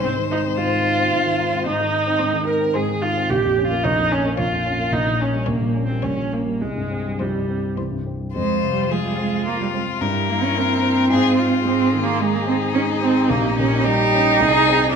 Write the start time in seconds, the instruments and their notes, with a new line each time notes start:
Already playing: cello G#3, violin C5
0.03 grand piano G#2, viola C4
0.16 grand piano D#3
0.30 grand piano D#4, viola D#4
0.44 grand piano C4
0.57 grand piano G#2, viola F4
0.71 grand piano D#3
0.85 grand piano D#4
0.98 grand piano C4
1.12 grand piano G#2
1.25 grand piano D#3
1.38 grand piano D#4
1.52 grand piano C4
1.66 grand piano G#2, viola D#4
1.79 grand piano D#3
1.94 grand piano D#4
2.06 grand piano C4
2.19 grand piano G#2, cello G#3, violin C5
2.33 grand piano D#3
2.47 grand piano D#4, viola A#4
2.60 grand piano C4
2.73 grand piano G#2, cello G#3, viola G#4, violin C5
2.89 grand piano D#3
3.01 grand piano D#4, viola F4
3.17 grand piano C4
3.30 grand piano A#1, viola G4
3.43 grand piano F2
3.57 grand piano C#4
3.67 grand piano A#3, viola F4
3.84 grand piano A#1, cello F3, viola D#4, violin C#5
3.99 grand piano F2
4.12 viola C#4, grand piano C#4
4.25 grand piano A#3
4.37 grand piano A#1, cello F3, viola F4, violin C#5
4.52 grand piano F2
4.65 grand piano C#4
4.79 grand piano A#3
4.92 grand piano A#1, viola D#4
5.06 grand piano A#2
5.20 grand piano C#4, viola C#4
5.33 grand piano G3
5.46 grand piano A#1, cello G3, viola A#3, violin C#5
5.61 grand piano A#2
5.75 grand piano C#4
5.86 grand piano G3, viola C4
6.03 grand piano A#1, cello G3, viola C#4, violin C#5
6.17 grand piano A#2
6.32 viola A#3, grand piano C#4
6.46 grand piano G3
6.61 grand piano C2, viola G#3
6.76 grand piano G2
6.91 grand piano C4
7.05 grand piano G3
7.19 grand piano C2, cello F3, viola G3, violin C5
7.34 grand piano G2
7.49 grand piano C4
7.63 grand piano G3
7.76 grand piano C2, cello E3, violin C5
7.91 grand piano G2
8.06 grand piano C4
8.20 grand piano G3
8.34 grand piano F2, cello G#3, viola F4, violin C5
8.63 grand piano C3
8.71 cello G3
8.89 cello F3, grand piano G#3, violin G#4
9.04 cello G3
9.18 cello G#3, grand piano C4
9.46 cello A#3, violin F4, grand piano F4
9.61 cello G3
9.73 cello G#3, grand piano C4
10.01 grand piano G2, cello G3, viola E4, violin A#4
10.29 grand piano G3, cello A#3
10.42 cello C#4
10.56 grand piano A#3, cello C4
10.82 grand piano C4
11.10 grand piano G#2, viola F4, violin G#4
11.38 grand piano C4 F4, violin F4
11.65 grand piano G#2, cello C4, viola G#4
11.93 grand piano D#3
12.02 cello A#3
12.19 cello G#3, grand piano G#3, violin D#4
12.35 cello A#3
12.47 grand piano C4, cello C4
12.74 cello C#4, grand piano D#4
13.01 cello C4, grand piano C4
13.29 grand piano A#1, cello A#3, viola G4
13.57 grand piano A#2, cello C#4
13.84 grand piano G3, cello D#4, violin G4
14.13 grand piano C#4
14.40 grand piano C2, violin G#4, viola G#4
14.68 grand piano C4 D#4
14.92 cello D4